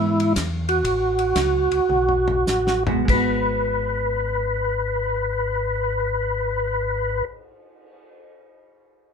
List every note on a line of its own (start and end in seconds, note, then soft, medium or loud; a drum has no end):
0.00 0.34 G#2 medium
0.00 0.33 E3 medium
0.00 0.33 B3 medium
0.00 0.33 E4 medium
0.20 ride soft
0.36 0.83 E2 medium
0.36 kick soft
0.36 snare medium
0.36 hi-hat pedal medium
0.36 ride medium
0.69 2.83 F#4 medium
0.69 ride soft
0.84 1.34 A1 medium
0.84 kick soft
0.84 ride soft
1.19 ride soft
1.35 1.69 C#2 medium
1.35 kick soft
1.35 snare medium
1.35 hi-hat pedal soft
1.35 ride medium
1.71 1.80 C#2 soft
1.71 ride soft
1.89 2.45 B1 medium
1.89 mid tom soft
2.09 floor tom soft
2.28 floor tom medium
2.46 3.06 A1 medium
2.46 snare medium
2.46 hi-hat pedal soft
2.67 snare medium
2.87 3.04 G#3 medium
2.87 3.09 B3 medium
2.87 3.12 F#4 medium
2.87 floor tom medium
3.05 7.23 G#1 medium
3.05 7.24 G#3 soft
3.05 kick medium
3.05 crash soft
3.10 7.29 B3 medium
3.10 7.32 F#4 medium
3.10 7.25 B4 medium
3.52 cymbal swell soft